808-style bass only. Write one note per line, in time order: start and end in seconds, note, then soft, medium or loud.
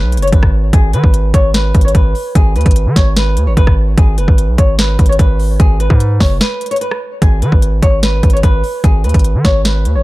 0.02 0.19 B1 loud
0.17 0.32 F#1 loud
0.33 0.72 G#1 loud
0.73 0.95 G#1 loud
0.93 1.03 D#3 loud
1.04 1.33 G#1 loud
1.34 1.73 G#1 loud
1.75 1.94 G#1 loud
1.95 2.14 G#1 loud
2.35 2.57 G#1 loud
2.56 2.65 D#2 loud
2.66 2.88 G#1 loud
2.86 2.96 D#3 loud
2.96 3.38 G#1 loud
3.37 3.48 D#2 loud
3.47 3.56 G#1 loud
3.57 3.96 G#1 loud
3.98 4.19 G#1 loud
4.18 4.27 F#1 loud
4.28 4.50 G#1 loud
4.48 4.58 B1 loud
4.58 4.97 G#1 loud
4.99 5.18 G#1 loud
5.19 5.58 G#1 loud
5.60 5.89 G#1 loud
5.90 6.19 G#2 loud
6.20 6.41 F#1 loud
7.22 7.44 G#1 loud
7.42 7.52 D#3 loud
7.52 7.81 G#1 loud
7.83 8.22 G#1 loud
8.23 8.43 G#1 loud
8.43 8.63 G#1 loud
8.84 9.06 G#1 loud
9.04 9.14 D#2 loud
9.14 9.36 G#1 loud
9.35 9.44 D#3 loud
9.45 9.87 G#1 loud
9.85 9.97 D#2 loud
9.95 10.03 G#1 loud